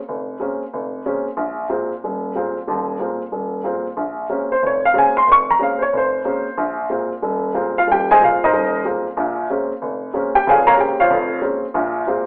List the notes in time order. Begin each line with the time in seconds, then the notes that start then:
0.09 F1
0.40 G#3 A#3 C4 C#4
0.73 F1
1.06 G#3 A#3 C4 C#4
1.37 A#1
1.69 A#2 G#3 A#3 C4
2.04 D#1
2.35 A#2 G#3 A#3 C4
2.67 D#1 D#2
2.99 A#2 G#3 A#3 C4
3.32 D#1
3.64 A#2 G#3 A#3 C4
3.97 A#1
4.29 G#3 A#3 C4 C#4
4.52 C5
4.62 F1
4.67 C#5
4.85 F5
4.94 G#3 A#3 C4 C#4
4.98 G#5
5.17 C6
5.27 F1
5.32 C#6
5.51 A#5
5.59 G#3 A#3 C4 C#4 F5
5.82 C#5
5.93 F1
5.97 C5
6.25 G#3 A#3 C4 C#4
6.58 A#1
6.90 A#2 G#3 A#3 C4
7.22 D#1
7.54 A#2 G#3 A#3 C4
7.78 F4 F5
7.87 D#1
7.92 G4 G5
8.11 G#4 C5 D#5 G#5
8.21 A#2 G#3 A#3 C4 F4 F5
8.44 D#4 A#4 C5 D#5
8.53 D#1
8.85 A#2 G#3 A#3 C4
9.17 A#1 A#2
9.50 G#3 A#3 C4 C#4
9.82 F1
10.14 G#3 A#3 C4 C#4
10.35 G4 G5
10.47 F1 F2 G#4 C#5 F5 G#5
10.67 A#4 C#5 F5 A#5
10.77 G#3 A#3 C4 C#4 G4 G5
11.00 F4 C5 C#5 F5
11.10 F1 F2
11.42 G#3 A#3 C4 C#4
11.74 A#1 A#2
12.07 A#2 G#3 A#3 C4